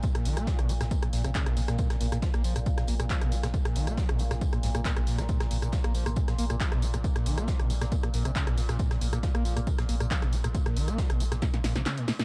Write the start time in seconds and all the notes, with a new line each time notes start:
Already playing: A#2
0.03 A#2, kick, closed hi-hat, tambourine
0.15 A#2, cross-stick, closed hi-hat
0.25 A#1 D#3, open hi-hat, tambourine
0.37 A#1 A#3, cross-stick, closed hi-hat, tambourine
0.47 F3, kick, snare, closed hi-hat, tambourine
0.59 A#1 A#2, cross-stick, closed hi-hat
0.69 A#1 A#3, open hi-hat, tambourine
0.81 A#1 A#2, cross-stick, snare, closed hi-hat, tambourine
0.91 A#2, kick, closed hi-hat, tambourine
1.03 A#2, cross-stick, closed hi-hat
1.13 A#1 A#2, snare, open hi-hat, tambourine
1.24 A#1 C3, cross-stick, closed hi-hat, tambourine
1.35 C#3, kick, snare, clap, closed hi-hat, tambourine
1.46 A#1 A#2, cross-stick, closed hi-hat
1.56 A#1 A#2, snare, open hi-hat, tambourine
1.67 A#1 A#2, cross-stick, snare, closed hi-hat, tambourine
1.78 A#2, kick, closed hi-hat, tambourine
1.90 A#2, cross-stick, snare, closed hi-hat
2.00 A#1 A#2, open hi-hat, tambourine
2.12 A#1 A#2, cross-stick, closed hi-hat, tambourine
2.22 F3, kick, snare, closed hi-hat, tambourine
2.34 A#1 A#3, cross-stick, closed hi-hat
2.44 A#1 F3, open hi-hat, tambourine
2.56 A#1 A#2, cross-stick, closed hi-hat, tambourine
2.66 A#2, kick, closed hi-hat, tambourine
2.78 A#2, cross-stick, snare, closed hi-hat
2.87 A#1 A#3, open hi-hat, tambourine
3.00 A#1 A#2, cross-stick, closed hi-hat, tambourine
3.09 F3, kick, snare, clap, closed hi-hat, tambourine
3.21 A#1 A#2, cross-stick, closed hi-hat
3.32 A#1 A#3, open hi-hat, tambourine
3.43 A#1 A#2, cross-stick, snare, closed hi-hat, tambourine
3.54 A#2, kick, closed hi-hat, tambourine
3.65 A#2, cross-stick, closed hi-hat
3.75 A#1 D#3, open hi-hat, tambourine
3.87 A#1 A#3, cross-stick, closed hi-hat, tambourine
3.97 F3, kick, snare, closed hi-hat, tambourine
4.09 A#1 A#2, cross-stick, closed hi-hat
4.19 A#1 A#3, open hi-hat, tambourine
4.31 A#1 A#2, cross-stick, snare, closed hi-hat, tambourine
4.41 A#2, kick, closed hi-hat, tambourine
4.53 A#2, cross-stick, closed hi-hat
4.63 A#1 G#2, snare, open hi-hat, tambourine
4.75 A#1 A#2, cross-stick, closed hi-hat, tambourine
4.85 A#2, kick, snare, clap, closed hi-hat, tambourine
4.97 A#1 A#2, cross-stick, closed hi-hat
5.07 A#1 A#2, snare, open hi-hat, tambourine
5.18 A#1 G#3, cross-stick, snare, closed hi-hat, tambourine
5.29 A#2, kick, closed hi-hat, tambourine
5.40 A#2, cross-stick, snare, closed hi-hat
5.51 A#1 A#2, open hi-hat, tambourine
5.62 A#1 A#2, cross-stick, closed hi-hat, tambourine
5.72 F3, kick, snare, closed hi-hat, tambourine
5.84 A#1 A#3, cross-stick, closed hi-hat
5.94 A#1 F3, open hi-hat, tambourine
6.06 A#1 A#2, cross-stick, closed hi-hat, tambourine
6.16 A#2, kick, closed hi-hat, tambourine
6.28 A#2, cross-stick, snare, closed hi-hat
6.38 A#1 A#3, open hi-hat, tambourine
6.50 A#1 A#2, cross-stick, closed hi-hat, tambourine
6.60 F3, kick, snare, clap, closed hi-hat, tambourine
6.72 A#1 A#2, cross-stick, closed hi-hat
6.82 A#1 A#3, open hi-hat, tambourine
6.94 A#1 A#2, cross-stick, closed hi-hat, tambourine
7.04 A#2, kick, closed hi-hat, tambourine
7.16 A#2, cross-stick, closed hi-hat
7.26 A#1 D#3, open hi-hat, tambourine
7.38 A#1 A#3, cross-stick, closed hi-hat, tambourine
7.47 F3, kick, snare, closed hi-hat, tambourine
7.60 A#1 A#2, cross-stick, closed hi-hat
7.70 A#1 A#3, open hi-hat, tambourine
7.81 A#1 A#2, cross-stick, snare, closed hi-hat, tambourine
7.92 A#2, kick, closed hi-hat, tambourine
8.03 A#2, cross-stick, closed hi-hat
8.14 A#1 A#2, snare, open hi-hat, tambourine
8.25 A#1 C3, cross-stick, closed hi-hat, tambourine
8.35 C#3, kick, snare, clap, closed hi-hat, tambourine
8.47 A#1 A#2, cross-stick, closed hi-hat
8.57 A#1 A#2, snare, open hi-hat, tambourine
8.69 A#1 A#2, cross-stick, snare, closed hi-hat, tambourine
8.79 A#2, kick, closed hi-hat, tambourine
8.91 A#2, cross-stick, snare, closed hi-hat
9.01 A#1 A#2, open hi-hat, tambourine
9.13 A#1 A#2, cross-stick, closed hi-hat, tambourine
9.23 F3, kick, snare, closed hi-hat, tambourine
9.35 A#1 A#3, cross-stick, closed hi-hat
9.45 A#1 F3, open hi-hat, tambourine
9.56 A#1 A#2, cross-stick, closed hi-hat, tambourine
9.67 A#2, kick, closed hi-hat, tambourine
9.78 A#2, cross-stick, snare, closed hi-hat
9.89 A#1 A#3, open hi-hat, tambourine
10.00 A#1 A#2, cross-stick, closed hi-hat, tambourine
10.10 F3, kick, snare, clap, closed hi-hat, tambourine
10.22 A#1 A#2, cross-stick, closed hi-hat
10.32 A#1 A#3, open hi-hat, tambourine
10.44 A#1 A#2, cross-stick, closed hi-hat, tambourine
10.54 A#2, kick, closed hi-hat, tambourine
10.66 A#2, cross-stick, closed hi-hat
10.76 A#1 D#3, open hi-hat, tambourine
10.88 A#1 A#3, cross-stick, closed hi-hat, tambourine
10.98 F3, kick, snare, closed hi-hat, tambourine
11.10 A#1 A#2, cross-stick, closed hi-hat
11.20 A#1 A#3, open hi-hat, tambourine
11.31 A#1 A#2, cross-stick, snare, closed hi-hat, tambourine
11.42 A#2, kick, snare, closed hi-hat, tambourine
11.54 A#2, snare, closed hi-hat
11.64 A#1 A#2, snare, open hi-hat, tambourine
11.75 A#1 C3, snare, closed hi-hat, tambourine
11.86 C#3, snare, clap, closed hi-hat, tambourine
11.97 A#2, closed hi-hat
12.08 A#2, snare, open hi-hat, tambourine
12.19 A#2, snare, closed hi-hat, tambourine